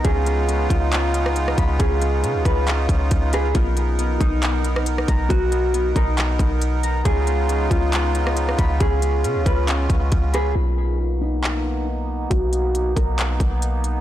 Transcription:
<<
  \new Staff \with { instrumentName = "Clean electric guitar" } { \time 4/4 \key b \lydian \tempo 4 = 137 gis'4. eis'4. r4 | gis'4. b'8 r4. gis'8 | eis'4. dis'4. r4 | fis'4. ais'8 r2 |
gis'4. eis'4. r4 | gis'4. b'8 r4. gis'8 | eis'4. dis'4. r4 | fis'4. ais'8 r2 | }
  \new Staff \with { instrumentName = "Harp" } { \time 4/4 \key b \lydian cis'8 cis'8 cis'8 eis'8 cis'8 cis'4 b''8 | cis'8 cis'8 cis'8 eis'8 cis'8 cis'4 b''8 | b8 b8 b8 dis'8 b8 b4 ais''8 | b8 b8 b8 dis'8 b8 b4 ais''8 |
cis'8 cis'8 cis'8 eis'8 cis'8 cis'4 b''8 | cis'8 cis'8 cis'8 eis'8 cis'8 cis'4 b''8 | r1 | r1 | }
  \new Staff \with { instrumentName = "Accordion" } { \time 4/4 \key b \lydian <dis' eis'>1~ | <dis' eis'>1~ | <dis' eis'>1~ | <dis' eis'>1 |
eis'1~ | eis'1 | dis'1~ | dis'1 | }
  \new Staff \with { instrumentName = "Accordion" } { \time 4/4 \key b \lydian << { b1~ | b1 | <b ais'>1~ | <b ais'>1 |
dis'1 | cis'1 | <ais b>1~ | <ais b>1 | } \\ { <cis gis>1~ | <cis gis>1 | r1 | r1 |
<cis gis>1~ | <cis gis>1 | r1 | r1 | } >> }
  \new Staff \with { instrumentName = "808-style bass" } { \clef bass \time 4/4 \key b \lydian cis,4. cis,2 cis,8 | cis,4 cis16 cis,16 cis,4 cis,8 cis,4 | b,,4. b,,2 b,,8 | b,,4. b,,4 b,,4. |
cis,4. cis,2 cis,8 | cis,4 cis16 cis,16 cis,4 cis,8 cis,4 | b,,1 | b,,4. b,,4 b,,4. | }
  \new DrumStaff \with { instrumentName = "Drums" } \drummode { \time 4/4 <hh bd>8 hh8 hh8 <hh bd>8 <hc hh>8 hh16 ss16 hh16 ss16 <hh bd>8 | <hh bd>8 hh8 hh8 <hh bd>8 <hc hh>8 <hh bd>8 <hh bd>8 <hh ss>8 | <hh bd>8 hh8 hh8 <hh bd>8 <hc hh>8 hh16 ss16 hh16 ss16 <hh bd>8 | <hh bd>8 hh8 hh8 <hh bd>8 <hc hh>8 <hh bd>8 hh8 hh8 |
<hh bd>8 hh8 hh8 <hh bd>8 <hc hh>8 hh16 ss16 hh16 ss16 <hh bd>8 | <hh bd>8 hh8 hh8 <hh bd>8 <hc hh>8 <hh bd>8 <hh bd>8 <hh ss>8 | r4 r4 hc4 r4 | <hh bd>8 hh8 hh8 <hh bd>8 <hc hh>8 <hh bd>8 hh8 hh8 | }
>>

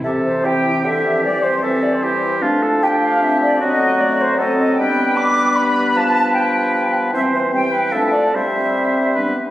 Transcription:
<<
  \new Staff \with { instrumentName = "Flute section" } { \time 3/4 \key c \major \tempo 4 = 152 e''8 c''8 g''4 e''4 | d''8 c''8 e''8 d''16 c''4~ c''16 | r4 g''8 f''8 e''8 d''8 | dis''4 d''8 c''8 dis''8 dis''8 |
g''4 d'''4 b''4 | a''4 g''4. r8 | e''8 c''8 g''4 e''8 d''8 | e''2~ e''8 r8 | }
  \new Staff \with { instrumentName = "Oboe" } { \time 3/4 \key c \major a'4 g'4 g'4~ | g'4 a'4 g'4 | f'8 a'8 g'2 | fis'2 a'4 |
b'2.~ | b'2. | c''4 c''8 b'8 a'4 | c''2 b'8 r8 | }
  \new Staff \with { instrumentName = "Clarinet" } { \time 3/4 \key c \major g'4 e'8 e'8 g'4 | g'4 c'4 e'4 | d'4 d'4 c'4 | b4 a4 c'4 |
d'2.~ | d'2. | c'4 c'4 d'4 | c'2 d'8 r8 | }
  \new Staff \with { instrumentName = "French horn section" } { \time 3/4 \key c \major << { c'4 c'4 c'4 | c'4 c'2 | d'2. | c'2 c'4 |
b2.~ | b2. | c'4 c'4 d'4 | c'2 b8 r8 | } \\ { e4 e4 e8 f8 | g4 g2 | a2. | a2 a4 |
g2.~ | g2. | g4 g4 a4 | g2 g8 r8 | } >> }
  \new Staff \with { instrumentName = "Bassoon" } { \clef bass \time 3/4 \key c \major c2 d4 | e2. | f2. | fis2. |
g2. | f2. | e2 f4 | g2~ g8 r8 | }
>>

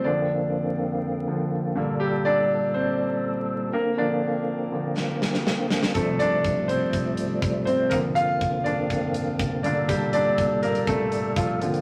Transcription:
<<
  \new Staff \with { instrumentName = "Grand piano" } { \time 4/4 \key g \dorian \tempo 4 = 122 <d' d''>2.~ <d' d''>8 r8 | <g g'>8 <d' d''>4 <c' c''>2 <bes bes'>8 | <d' d''>2.~ <d' d''>8 r8 | a'8 <d' d''>4 <c' c''>2 <c' c''>8 |
<bes bes'>8 <f' f''>4 <d' d''>2 <d' d''>8 | <g g'>8 <d' d''>4 <bes bes'>8 <a a'>4 <f f'>4 | }
  \new Staff \with { instrumentName = "Grand piano" } { \clef bass \time 4/4 \key g \dorian <f, d f>8 r2 <f, d f>8 r8 <g, d bes>8 | r1 | <bes, d f>4. <bes, d f>8 r2 | <f, c a>8 r2. r8 |
<f, d f>2.~ <f, d f>8 <g, d bes>8 | r2. r8 <bes, d f>8 | }
  \new Staff \with { instrumentName = "Tonewheel organ" } { \clef bass \time 4/4 \key g \dorian <f, d bes c'>2.~ <f, d bes c'>8 <bes, g a'>8~ | <bes, g a'>2.~ <bes, g a'>8 <d bes c'>8~ | <d bes c'>1 | <f g a>1 |
<f, d bes c'>2.~ <f, d bes c'>8 <bes, g a'>8~ | <bes, g a'>2.~ <bes, g a'>8 <d bes c'>8 | }
  \new DrumStaff \with { instrumentName = "Drums" } \drummode { \time 4/4 r4 r4 r4 r4 | r4 r4 r4 r4 | r4 r4 sn8 sn16 sn16 sn8 sn16 sn16 | <hh bd>8 hh8 <hh bd>8 hh8 <hh bd>8 hh8 <hh bd>8 hh8 |
<hh bd>8 hh8 <hh bd>8 hh8 <hh bd>8 hh8 <hh bd>8 hh8 | <hh bd>8 hh8 <hh bd>8 hh16 hh16 <hh bd>8 hh8 <hh bd>8 hh16 hh16 | }
>>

